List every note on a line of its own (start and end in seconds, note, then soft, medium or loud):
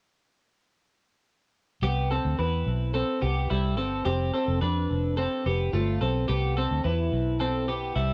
1.82 2.18 C2 medium
1.82 2.11 B3 medium
1.82 2.10 G4 medium
2.11 2.39 C4 medium
2.11 2.38 A4 medium
2.25 2.37 D2 medium
2.39 2.63 E2 medium
2.39 2.92 E4 soft
2.39 2.91 B4 medium
2.66 3.02 B1 medium
2.94 3.23 C4 medium
2.94 3.22 A4 medium
3.21 3.46 C2 medium
3.21 3.50 B3 soft
3.21 3.50 G4 medium
3.50 3.78 C2 medium
3.50 3.77 G3 medium
3.50 3.77 E4 medium
3.77 4.02 G1 medium
3.77 4.05 C4 soft
3.77 4.05 A4 medium
4.05 4.30 F1 medium
4.05 4.33 C4 medium
4.05 4.33 G4 medium
4.34 4.62 C4 medium
4.34 4.61 A4 medium
4.48 4.60 F1 medium
4.61 4.86 F2 medium
4.61 5.15 D4 soft
4.61 5.14 B4 medium
4.91 5.26 F1 medium
5.17 5.46 C4 medium
5.17 5.45 A4 medium
5.46 5.69 F1 medium
5.46 5.73 B3 medium
5.46 5.74 G4 medium
5.73 5.97 G1 medium
5.73 6.01 A3 soft
5.73 6.01 F4 medium
6.01 6.25 B1 medium
6.01 6.30 C4 soft
6.01 6.28 A4 medium
6.28 6.65 C2 medium
6.28 6.57 B3 medium
6.28 6.56 G4 medium
6.57 6.85 C4 medium
6.57 6.84 A4 medium
6.71 6.83 D2 medium
6.84 7.09 E2 medium
6.84 7.38 E4 soft
6.84 7.37 B4 medium
7.12 7.92 B1 medium
7.40 7.69 C4 medium
7.40 7.68 A4 medium
7.68 7.97 B3 medium
7.68 7.95 G4 medium
7.96 8.13 C2 medium
7.96 8.13 G3 soft
7.96 8.13 E4 medium